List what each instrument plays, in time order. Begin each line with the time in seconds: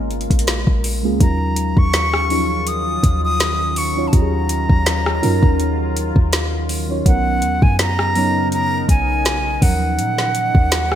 Already playing: 808-style bass G#1, ambient pad C#3 G#3 F4 A#4, fm electric piano G#3 A#3 B3 C#4 F4 A#4
0.11 closed hi-hat
0.21 closed hi-hat
0.30 808-style bass A#1, kick, closed hi-hat
0.39 closed hi-hat
0.47 snare, closed hi-hat
0.67 808-style bass A#1, kick
0.84 open hi-hat
1.03 808-style bass C#2, fm electric piano G#3 A#3 C#4 F4 G#4
1.20 808-style bass D#2, ambient pad D#3 F#3 C#4 F4, fm electric piano F#3 C#4 D#4 F4 A#4, flute A#5, kick, closed hi-hat
1.56 closed hi-hat
1.77 808-style bass D#2, flute C#6, kick
1.93 snare, closed hi-hat
2.14 cross-stick
2.30 fm electric piano F3 C#4 D#4 F4 G#4, open hi-hat
2.36 fm electric piano F#3
2.67 flute D#6, closed hi-hat
3.03 808-style bass D#2, kick, closed hi-hat
3.24 flute D#6
3.40 snare, closed hi-hat
3.76 flute C#6, open hi-hat
3.96 fm electric piano F#3 C#4 D#4 F4 C#5
4.08 flute A5
4.12 808-style bass D#2, fm electric piano F#3 C#4 D#4 F4 G4, ambient pad F4, flute A#5, kick, closed hi-hat
4.21 fm electric piano G#4
4.49 closed hi-hat
4.69 808-style bass D#2, kick
4.86 snare, closed hi-hat
5.06 cross-stick
5.22 808-style bass F#2, fm electric piano F#3 C#4 D#4 F4 A#4, open hi-hat
5.43 808-style bass D#2, kick
5.60 closed hi-hat
5.97 closed hi-hat
6.16 808-style bass D#2, kick
6.33 snare, closed hi-hat
6.69 open hi-hat
6.89 fm electric piano F#3 C#4 D#4 F4 C#5
7.06 808-style bass B1, ambient pad C#3 B3 D#4 A#4, fm electric piano F#3 B3 C#4 D#4 A#4, flute F#5, kick, closed hi-hat
7.42 808-style bass D#2, closed hi-hat
7.62 808-style bass F#2, flute G#5, kick
7.79 flute A#5, snare, closed hi-hat
7.99 cross-stick
8.15 fm electric piano F#3 B3 C#4 D#4 C#5, open hi-hat
8.52 flute A#5, closed hi-hat
8.89 808-style bass B1, flute G#5, kick, closed hi-hat
9.25 snare, closed hi-hat
9.62 808-style bass D#2, ambient pad D#3 A#3 C#4 D#4, fm electric piano F3 F#3 C#4 D#4 A#4, flute F#5, kick, open hi-hat
9.99 808-style bass A#2, closed hi-hat
10.18 snare
10.35 closed hi-hat
10.55 808-style bass D#2, kick
10.72 snare, closed hi-hat
10.92 cross-stick